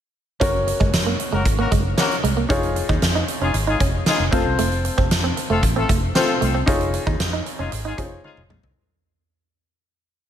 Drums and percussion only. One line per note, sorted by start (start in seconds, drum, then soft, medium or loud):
0.41 kick loud
0.41 closed hi-hat medium
0.68 closed hi-hat medium
0.81 kick medium
0.93 snare loud
0.93 closed hi-hat medium
1.20 closed hi-hat medium
1.46 kick medium
1.46 closed hi-hat medium
1.72 kick medium
1.72 closed hi-hat medium
1.98 snare medium
1.98 closed hi-hat medium
2.11 closed hi-hat soft
2.24 closed hi-hat medium
2.50 kick loud
2.50 closed hi-hat medium
2.63 closed hi-hat soft
2.76 closed hi-hat medium
2.89 kick medium
3.02 snare medium
3.02 closed hi-hat medium
3.28 closed hi-hat medium
3.54 closed hi-hat medium
3.80 kick medium
3.80 closed hi-hat medium
4.06 snare medium
4.06 closed hi-hat medium
4.33 kick loud
4.33 closed hi-hat medium
4.58 closed hi-hat medium
4.72 closed hi-hat soft
4.85 closed hi-hat medium
4.98 kick medium
5.11 snare loud
5.11 closed hi-hat medium
5.37 closed hi-hat medium
5.63 kick medium
5.63 closed hi-hat medium
5.89 kick medium
5.89 closed hi-hat medium
6.15 snare medium
6.15 closed hi-hat medium
6.42 closed hi-hat medium
6.68 kick loud
6.68 closed hi-hat medium
6.81 closed hi-hat soft
6.94 closed hi-hat medium
7.07 kick medium
7.20 snare loud
7.20 closed hi-hat medium
7.46 closed hi-hat medium
7.72 closed hi-hat medium
7.98 kick medium
7.98 closed hi-hat medium
8.24 high tom soft
8.37 mid tom medium
8.50 mid tom medium
8.63 floor tom medium